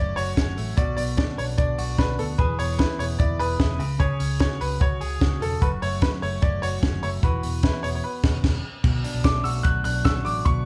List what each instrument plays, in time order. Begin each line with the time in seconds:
Already playing: fingered electric bass F#1, clean electric guitar F#2 A3 C#4 F#4, upright piano D5
0.16 fingered electric bass F#1, clean electric guitar F#4, upright piano C#5, open hi-hat
0.36 fingered electric bass F#1, clean electric guitar C#4, kick, snare, closed hi-hat
0.57 fingered electric bass A1, clean electric guitar A3, open hi-hat
0.77 fingered electric bass B1, clean electric guitar B2 F#4, upright piano D5, kick, closed hi-hat
0.97 fingered electric bass B1, clean electric guitar B3, upright piano D5, open hi-hat
1.17 clean electric guitar D4, upright piano D5, kick, snare, closed hi-hat
1.37 fingered electric bass B1, clean electric guitar B3, upright piano C#5, open hi-hat
1.58 fingered electric bass B1, clean electric guitar D4, upright piano D5, kick, closed hi-hat
1.78 fingered electric bass B1, clean electric guitar F#4, open hi-hat
1.98 fingered electric bass B1, clean electric guitar D4, upright piano B4, kick, snare, closed hi-hat
2.19 fingered electric bass D2, clean electric guitar B3, upright piano A4, open hi-hat
2.38 fingered electric bass E1, clean electric guitar E3 G#4, upright piano B4, kick, closed hi-hat
2.59 fingered electric bass E1, clean electric guitar B3, upright piano C#5, open hi-hat
2.79 clean electric guitar E4, upright piano B4, kick, snare, closed hi-hat
2.99 fingered electric bass E1, clean electric guitar B3, upright piano C#5, open hi-hat
3.19 fingered electric bass E1, clean electric guitar E4, upright piano D5, kick, closed hi-hat
3.39 fingered electric bass E1, clean electric guitar G#4, upright piano B4, open hi-hat
3.59 fingered electric bass E1, clean electric guitar E4, kick, snare, closed hi-hat
3.79 fingered electric bass C#2, clean electric guitar C#3, open hi-hat
3.99 clean electric guitar C#3 G#4, upright piano C#5, kick, closed hi-hat
4.20 fingered electric bass C#2, clean electric guitar C#4, open hi-hat
4.39 clean electric guitar F#4, upright piano C#5, kick, snare, closed hi-hat
4.60 fingered electric bass C#2, clean electric guitar C#4, upright piano B4, open hi-hat
4.80 fingered electric bass C#2, clean electric guitar F#4, upright piano C#5, kick, closed hi-hat
5.01 fingered electric bass C#2, clean electric guitar G#4, open hi-hat
5.21 fingered electric bass C#2, clean electric guitar F#4, kick, snare, closed hi-hat
5.41 fingered electric bass E1, clean electric guitar C#4, upright piano A4, open hi-hat
5.61 fingered electric bass F#1, clean electric guitar F#2 F#4, upright piano B4, kick, closed hi-hat
5.82 fingered electric bass F#1, clean electric guitar A3, upright piano C#5, open hi-hat
6.01 clean electric guitar C#4, upright piano B4, kick, snare, closed hi-hat
6.22 fingered electric bass F#1, clean electric guitar A3, upright piano C#5, open hi-hat
6.42 fingered electric bass F#1, clean electric guitar C#4, upright piano D5, kick, closed hi-hat
6.62 fingered electric bass F#1, clean electric guitar F#4, upright piano C#5, open hi-hat
6.83 fingered electric bass F#1, clean electric guitar C#4, kick, snare, closed hi-hat
7.03 fingered electric bass F#1, clean electric guitar A3, upright piano C#5, open hi-hat
7.23 fingered electric bass E1, clean electric guitar E3 F#4, upright piano B4, kick, closed hi-hat
7.43 fingered electric bass E1, clean electric guitar B3, open hi-hat
7.63 clean electric guitar E4, upright piano B4, kick, snare, closed hi-hat
7.83 fingered electric bass E1, clean electric guitar B3, upright piano C#5, open hi-hat
7.95 upright piano C#5
8.04 upright piano B4
8.23 fingered electric bass E1, kick, snare, crash
8.44 fingered electric bass E1, kick, snare, crash
8.84 fingered electric bass B1, clean electric guitar B2, kick, crash
9.04 clean electric guitar D4, open hi-hat
9.14 fingered electric bass B1
9.24 fingered electric bass B1, clean electric guitar A3, upright piano D6, kick, snare, closed hi-hat
9.44 fingered electric bass B1, clean electric guitar F#4, upright piano E6, open hi-hat
9.63 fingered electric bass B1, clean electric guitar F#3, upright piano F#6, kick, closed hi-hat
9.84 fingered electric bass B1, clean electric guitar D4, upright piano F#6, open hi-hat
10.05 clean electric guitar F#4, upright piano E6, kick, snare, closed hi-hat
10.25 fingered electric bass A1, clean electric guitar D4, upright piano D6, open hi-hat
10.45 fingered electric bass B1, clean electric guitar B2, upright piano C#6, kick, closed hi-hat